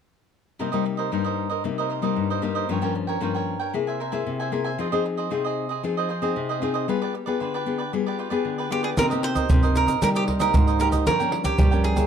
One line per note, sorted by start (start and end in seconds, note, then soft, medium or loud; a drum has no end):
0.59 1.10 C3 medium
0.59 0.67 G3 medium
0.59 0.68 A#3 soft
0.59 0.72 D#4 soft
0.59 0.68 D#4 medium
0.59 0.72 A#4 soft
0.59 0.72 C5 soft
0.59 0.71 D#5 soft
0.72 1.08 G3 medium
0.72 1.08 A#3 medium
0.72 1.08 D#4 medium
0.72 0.84 A#4 soft
0.72 0.85 C5 medium
0.72 0.84 D#5 medium
0.85 muted cavaquinho stroke soft
0.97 1.11 A#4 soft
0.97 1.11 C5 medium
0.97 1.10 D#5 medium
1.12 1.62 G2 medium
1.12 1.46 G3 soft
1.12 1.46 A#3 soft
1.12 1.24 D#4 soft
1.12 1.46 D#4 medium
1.12 1.24 A#4 soft
1.12 1.25 C5 soft
1.12 1.23 D#5 soft
1.24 1.50 A#4 medium
1.24 1.49 C5 medium
1.24 1.48 D#5 medium
1.50 1.63 A#4 soft
1.50 1.63 C5 soft
1.50 1.63 D#5 medium
1.64 2.14 C3 medium
1.64 2.00 G3 soft
1.64 2.00 A#3 soft
1.64 2.00 D#4 medium
1.64 muted cavaquinho stroke soft
1.78 1.89 A#4 soft
1.78 1.90 C5 medium
1.78 1.90 D#5 medium
1.90 2.02 D#4 soft
1.90 2.03 A#4 soft
1.90 2.02 C5 soft
1.90 2.01 D#5 soft
2.02 2.38 G3 medium
2.02 2.38 A#3 medium
2.02 2.39 D#4 medium
2.02 2.29 A#4 medium
2.02 2.29 C5 medium
2.02 2.28 D#5 medium
2.16 2.67 G2 medium
2.30 2.42 A#4 medium
2.30 2.43 C5 medium
2.30 2.42 D#5 medium
2.42 2.67 G3 medium
2.42 2.67 A#3 medium
2.42 2.55 D#4 soft
2.42 2.67 D#4 medium
2.42 2.55 A#4 soft
2.42 2.55 C5 soft
2.42 2.54 D#5 medium
2.55 2.69 A#4 medium
2.55 2.68 C5 medium
2.55 2.68 D#5 medium
2.69 3.19 G2 medium
2.69 2.78 F3 medium
2.69 2.78 A#3 medium
2.69 2.78 C#4 medium
2.69 2.82 F4 soft
2.69 2.82 A#4 soft
2.69 2.82 C#5 soft
2.69 2.81 G5 medium
2.82 3.17 F3 medium
2.82 3.17 A#3 medium
2.82 3.18 C#4 medium
2.82 2.94 A#4 soft
2.82 2.94 C#5 medium
2.82 2.94 G5 medium
2.95 muted cavaquinho stroke soft
3.07 3.21 A#4 soft
3.07 3.21 C#5 medium
3.07 3.20 G5 medium
3.21 3.71 G2 medium
3.21 3.55 F3 soft
3.21 3.55 A#3 medium
3.21 3.56 C#4 medium
3.21 3.34 F4 soft
3.21 3.34 A#4 soft
3.21 3.34 C#5 soft
3.21 3.33 G5 medium
3.34 3.60 A#4 soft
3.34 3.59 C#5 medium
3.34 3.58 G5 medium
3.59 3.73 A#4 soft
3.59 3.73 C#5 soft
3.59 3.72 G5 soft
3.73 4.24 C3 medium
3.73 3.99 A#3 medium
3.73 3.99 E4 medium
3.73 3.99 G#4 medium
3.73 muted cavaquinho stroke soft
3.87 3.99 C5 soft
3.87 4.00 E5 medium
3.87 3.99 G#5 medium
4.00 4.12 A#4 soft
4.00 4.13 C5 soft
4.00 4.12 E5 soft
4.00 4.11 G#5 soft
4.12 4.48 A#3 medium
4.12 4.48 E4 medium
4.12 4.48 G#4 medium
4.12 4.39 C5 soft
4.12 4.38 E5 medium
4.12 4.38 G#5 medium
4.26 4.76 C3 medium
4.40 4.51 C5 medium
4.40 4.52 E5 medium
4.40 4.52 G#5 medium
4.52 4.69 A#3 medium
4.52 4.69 E4 medium
4.52 4.70 G#4 medium
4.52 4.64 A#4 soft
4.52 4.65 C5 soft
4.52 4.64 E5 soft
4.52 4.63 G#5 soft
4.64 4.78 C5 medium
4.64 4.78 E5 medium
4.64 4.77 G#5 medium
4.78 5.29 F3 medium
4.78 4.87 C4 medium
4.78 4.87 D#4 medium
4.78 4.91 F4 soft
4.78 4.91 G#4 soft
4.78 4.87 G#4 medium
4.78 4.92 C5 medium
4.78 4.91 D#5 medium
4.92 5.27 C4 medium
4.92 5.27 D#4 medium
4.92 5.28 G#4 medium
4.92 5.05 G#4 medium
4.92 5.05 C5 medium
4.92 5.04 D#5 medium
5.05 muted cavaquinho stroke soft
5.17 5.31 G#4 medium
5.17 5.30 C5 medium
5.17 5.30 D#5 medium
5.30 5.81 C3 medium
5.30 5.65 C4 medium
5.30 5.65 D#4 soft
5.30 5.43 F4 medium
5.30 5.65 G#4 medium
5.30 5.44 G#4 soft
5.30 5.44 C5 soft
5.30 5.43 D#5 medium
5.44 5.70 G#4 medium
5.44 5.69 C5 medium
5.44 5.68 D#5 medium
5.69 5.83 G#4 soft
5.69 5.82 C5 soft
5.69 5.82 D#5 medium
5.83 6.33 F3 medium
5.83 6.08 C4 medium
5.83 6.09 D#4 medium
5.83 6.09 G#4 medium
5.83 muted cavaquinho stroke soft
5.97 6.08 G#4 soft
5.97 6.09 C5 medium
5.97 6.09 D#5 medium
6.09 6.21 F4 soft
6.09 6.22 G#4 soft
6.09 6.22 C5 medium
6.09 6.21 D#5 soft
6.22 6.58 C4 medium
6.22 6.58 D#4 medium
6.22 6.58 G#4 medium
6.22 6.48 G#4 soft
6.22 6.48 C5 medium
6.22 6.48 D#5 medium
6.36 6.86 C3 medium
6.49 6.61 G#4 medium
6.49 6.61 C5 medium
6.49 6.61 D#5 medium
6.61 6.86 C4 medium
6.61 6.86 D#4 medium
6.61 6.74 F4 soft
6.61 6.74 G#4 soft
6.61 6.87 G#4 medium
6.61 6.74 C5 soft
6.61 6.73 D#5 soft
6.74 6.87 G#4 medium
6.74 6.87 C5 medium
6.74 6.87 D#5 medium
6.88 7.38 G3 medium
6.88 7.13 B3 soft
6.88 7.00 F4 soft
6.88 7.13 F4 soft
6.88 7.01 G4 soft
6.88 7.13 G#4 medium
6.88 7.01 B4 medium
6.88 7.00 D5 medium
7.02 7.13 G4 soft
7.02 7.14 B4 medium
7.02 7.14 D5 medium
7.15 muted cavaquinho stroke soft
7.26 7.62 B3 soft
7.26 7.63 F4 soft
7.26 7.40 G4 soft
7.26 7.63 G#4 medium
7.26 7.39 B4 medium
7.26 7.39 D5 medium
7.40 7.90 D3 medium
7.40 7.53 F4 medium
7.40 7.53 G4 soft
7.40 7.53 B4 soft
7.40 7.53 D5 soft
7.54 7.79 G4 medium
7.54 7.78 B4 medium
7.54 7.77 D5 medium
7.66 7.82 B3 medium
7.66 7.82 F4 soft
7.66 7.82 G#4 soft
7.78 7.92 G4 soft
7.78 7.92 B4 soft
7.78 7.91 D5 medium
7.93 8.43 G3 medium
7.93 8.28 B3 medium
7.93 8.28 F4 soft
7.93 8.28 G#4 medium
7.93 muted cavaquinho stroke soft
8.06 8.18 G4 medium
8.06 8.19 B4 medium
8.06 8.18 D5 medium
8.19 8.31 F4 soft
8.19 8.31 G4 soft
8.19 8.30 B4 soft
8.19 8.29 D5 soft
8.30 8.67 B3 medium
8.30 8.67 F4 medium
8.30 8.57 G4 medium
8.30 8.67 G#4 medium
8.30 8.57 B4 medium
8.30 8.56 D5 medium
8.45 8.95 D3 medium
8.58 8.70 G4 medium
8.58 8.70 B4 medium
8.58 8.70 D5 medium
8.70 8.93 B3 medium
8.70 8.83 F4 soft
8.70 8.93 F4 medium
8.70 8.83 G4 soft
8.70 8.84 G4 medium
8.70 8.93 G#4 medium
8.70 8.83 B4 soft
8.70 8.82 D5 soft
8.83 8.97 G4 medium
8.83 8.89 G#4 medium
8.83 8.96 B4 soft
8.83 8.96 D5 medium
8.97 9.47 C3 medium
8.97 9.42 C3 medium
8.97 9.07 A#3 medium
8.97 9.09 D#4 soft
8.97 9.07 D#4 soft
8.97 9.07 G4 medium
8.97 9.10 A#4 medium
8.97 9.06 A#4 medium
8.97 9.09 C5 soft
8.97 9.09 D#5 medium
8.97 pandeiro medium
8.97 shaker medium
8.97 surdo medium
9.10 9.46 A#3 medium
9.10 9.46 D#4 medium
9.10 9.46 G4 medium
9.10 9.21 A#4 soft
9.10 9.22 C5 medium
9.10 9.22 D#5 medium
9.10 pandeiro soft
9.10 shaker soft
9.22 9.78 C5 loud
9.22 muted cavaquinho stroke soft
9.22 pandeiro medium
9.35 9.49 A#4 soft
9.35 9.48 C5 medium
9.35 9.48 D#5 medium
9.35 pandeiro medium
9.35 shaker medium
9.35 surdo soft
9.50 9.99 G2 medium
9.50 9.94 C3 medium
9.50 9.98 A#3 medium
9.50 9.98 D#4 medium
9.50 9.98 G4 medium
9.50 9.62 A#4 soft
9.50 9.62 C5 soft
9.50 9.61 D#5 medium
9.50 pandeiro medium
9.50 shaker medium
9.50 surdo loud
9.62 9.87 A#4 medium
9.62 9.86 C5 medium
9.62 9.86 D#5 medium
9.62 pandeiro soft
9.62 shaker soft
9.75 10.01 A#4 medium
9.75 pandeiro medium
9.75 shaker medium
9.87 10.01 A#4 soft
9.87 10.00 C5 soft
9.87 10.00 D#5 medium
9.87 pandeiro medium
9.87 shaker medium
9.87 surdo soft
10.02 10.52 C3 medium
10.02 10.46 G3 medium
10.02 10.26 A#3 medium
10.02 10.27 D#4 medium
10.02 10.27 G4 medium
10.02 10.08 A#4 medium
10.02 pandeiro medium
10.02 shaker medium
10.02 surdo medium
10.15 10.23 G4 medium
10.15 10.26 A#4 medium
10.15 10.27 C5 medium
10.15 10.27 D#5 medium
10.15 pandeiro soft
10.15 shaker soft
10.27 10.39 D#4 soft
10.27 10.40 A#4 soft
10.27 10.39 C5 soft
10.27 10.38 D#5 medium
10.27 pandeiro medium
10.27 surdo soft
10.39 10.76 A#3 medium
10.39 10.76 D#4 medium
10.39 10.76 G4 medium
10.39 10.66 A#4 medium
10.39 10.79 A#4 medium
10.39 10.66 C5 medium
10.39 10.65 D#5 medium
10.39 pandeiro medium
10.39 shaker medium
10.54 11.07 G#2 medium
10.54 pandeiro medium
10.54 shaker medium
10.54 surdo medium
10.67 10.79 A#4 medium
10.67 10.80 C5 medium
10.67 10.79 D#5 medium
10.67 pandeiro soft
10.67 shaker soft
10.67 surdo soft
10.79 11.04 A#3 medium
10.79 10.92 D#4 soft
10.79 11.04 D#4 soft
10.79 11.05 G4 medium
10.79 10.92 A#4 soft
10.79 10.88 A#4 medium
10.79 10.92 C5 soft
10.79 pandeiro medium
10.79 shaker medium
10.92 11.06 A#4 medium
10.92 11.05 C5 medium
10.92 11.05 D#5 medium
10.92 pandeiro medium
10.92 shaker medium
10.92 surdo soft
11.06 11.51 G2 medium
11.06 11.56 G2 medium
11.06 11.15 F3 medium
11.06 11.16 A#3 medium
11.06 11.16 C#4 medium
11.06 11.18 F4 soft
11.06 11.19 A#4 soft
11.06 11.44 A#4 medium
11.06 11.19 C#5 medium
11.06 11.18 G5 medium
11.06 pandeiro medium
11.06 shaker medium
11.06 surdo medium
11.19 11.55 F3 medium
11.19 11.55 A#3 medium
11.19 11.55 C#4 medium
11.19 11.31 A#4 medium
11.19 11.31 C#5 medium
11.19 11.31 G5 medium
11.19 pandeiro soft
11.19 shaker soft
11.31 muted cavaquinho stroke soft
11.31 pandeiro medium
11.44 11.84 G4 medium
11.44 11.58 A#4 soft
11.44 11.57 C#5 medium
11.44 11.57 G5 medium
11.44 pandeiro medium
11.44 shaker medium
11.44 surdo soft
11.58 12.07 G2 medium
11.58 11.67 F3 medium
11.58 12.03 G3 loud
11.58 11.67 A#3 medium
11.58 11.67 C#4 medium
11.58 11.70 F4 soft
11.58 11.71 A#4 soft
11.58 11.71 C#5 soft
11.58 11.70 G5 soft
11.58 pandeiro medium
11.58 shaker medium
11.58 surdo loud
11.71 11.94 F3 soft
11.71 11.94 A#3 medium
11.71 11.94 C#4 medium
11.71 11.97 A#4 medium
11.71 11.96 C#5 medium
11.71 11.95 G5 medium
11.71 pandeiro soft
11.71 shaker soft
11.84 12.07 G#4 medium
11.84 pandeiro medium
11.96 12.07 A#3 soft
11.96 12.07 E4 medium
11.96 12.07 G#4 medium
11.96 12.07 A#4 soft
11.96 12.07 C#5 medium
11.96 12.07 G5 medium
11.96 pandeiro medium
11.96 shaker medium
11.96 surdo soft